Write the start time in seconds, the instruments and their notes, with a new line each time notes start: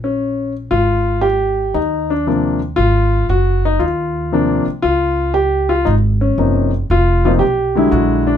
Already playing: upright bass A#1
0.04 grand piano C#4
0.71 upright bass G#1, grand piano F4
1.21 grand piano G4
1.74 upright bass D#2, grand piano D#4
2.10 grand piano D4
2.27 grand piano C3 F3 A#3 D4
2.76 upright bass G#1, grand piano F4
3.29 upright bass F#1, grand piano F#4
3.65 grand piano D#4
3.79 upright bass D#2, grand piano F4
4.32 grand piano C3 F3 A#3 D4
4.67 muted upright bass stroke
4.82 upright bass C#2, grand piano F4
5.34 grand piano G4
5.69 grand piano F4
5.85 upright bass G#1, grand piano D#4
6.21 grand piano C#4
6.38 upright bass F#1, grand piano C3 F3 A#3 D#4
6.90 upright bass F1, grand piano F4
7.25 grand piano C3 F3 A#3 D#4 F4
7.39 upright bass B1, grand piano G4
7.75 grand piano D3 F#3 G#3 E4
7.91 upright bass A#1, grand piano F#4
8.27 grand piano D4